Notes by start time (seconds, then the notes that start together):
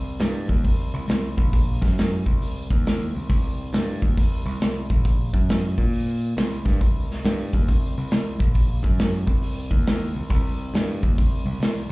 Already playing: C2
0.19 G2, snare, open hi-hat
0.48 D#2, kick
0.64 C2, kick, open hi-hat
0.94 C2
1.08 C2, snare, open hi-hat
1.37 A#1, kick
1.53 kick, open hi-hat
1.82 F#2, kick, snare
1.98 snare, open hi-hat
2.26 C2, kick
2.42 open hi-hat
2.70 D#2, kick
2.86 snare, open hi-hat
3.14 C2
3.29 C2, kick, open hi-hat
3.73 G2, snare, open hi-hat
4.02 D#2, kick
4.17 C2, kick, open hi-hat
4.46 C2
4.61 C2, snare, open hi-hat
4.90 A#1, kick
5.05 kick, open hi-hat
5.33 F#2, kick
5.49 snare, open hi-hat
5.78 A#2, kick
5.93 open hi-hat
6.37 C2, snare, open hi-hat
6.65 G2, kick, snare
6.81 C2, kick, open hi-hat
7.11 snare
7.25 G2, snare, open hi-hat
7.53 D#2, kick
7.68 C2, kick, open hi-hat
7.98 C2
8.11 C2, snare, open hi-hat
8.39 A#1, kick
8.55 kick, open hi-hat
8.83 F#2, kick
8.99 snare, open hi-hat
9.27 C2, kick
9.42 open hi-hat
9.71 D#2, kick
9.86 snare, open hi-hat
10.15 C2
10.30 C2, kick, open hi-hat
10.74 G2, snare, open hi-hat
11.03 D#2, kick
11.18 C2, kick, open hi-hat
11.46 C2
11.60 C2, snare, open hi-hat